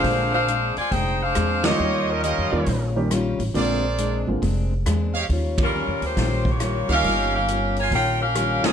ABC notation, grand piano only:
X:1
M:4/4
L:1/8
Q:"Swing" 1/4=137
K:Eb
V:1 name="Grand piano"
[D,A,B,CF]2 z4 z [E,G,B,_DF]- | [E,G,B,_DF]2 z [E,G,B,DF] z [E,G,B,DG] z2 | [D,A,B,CF] z2 [D,A,B,CF] z4 | z6 z [E,G,B,_DF]- |
[E,G,B,_DF]2 z4 z [=D,A,B,CF] |]